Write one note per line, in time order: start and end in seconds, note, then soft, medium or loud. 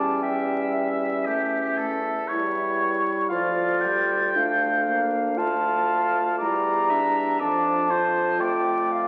0.00 2.99 E2 soft
0.00 0.23 G3 soft
0.00 1.98 C#4 soft
0.00 0.21 D5 soft
0.00 0.24 A5 medium
0.22 1.28 G3 soft
0.22 1.27 E5 soft
0.22 0.75 G5 soft
0.74 2.79 E5 soft
1.26 1.63 A3 soft
1.26 1.79 G4 soft
1.77 2.11 A3 soft
1.77 2.30 A4 soft
2.28 3.33 G3 soft
2.28 3.31 E4 soft
2.28 3.28 C#5 soft
3.29 6.42 D2 soft
3.29 3.86 F3 soft
3.29 4.37 F4 soft
3.29 4.31 D5 medium
3.29 3.83 F5 soft
3.81 4.38 G3 soft
3.81 5.10 G5 soft
4.35 4.86 A3 soft
4.35 5.39 D4 soft
4.35 5.39 F5 medium
4.87 5.40 A#3 soft
5.37 6.42 A3 soft
5.37 6.40 F4 soft
5.37 6.36 F5 soft
5.37 6.40 A5 medium
6.38 7.40 E2 soft
6.38 7.40 G3 soft
6.38 6.93 E4 soft
6.38 6.91 D5 soft
6.38 7.38 A#5 medium
6.90 7.41 D4 soft
6.90 7.41 E5 soft
7.40 9.08 F2 soft
7.40 8.42 F3 soft
7.40 7.90 D4 soft
7.40 7.92 D5 soft
7.40 8.42 A5 medium
7.90 9.08 F4 soft
7.90 8.42 C5 soft
8.40 9.08 A3 soft
8.40 9.08 D5 soft
8.40 8.94 G5 medium
8.92 9.08 F5 medium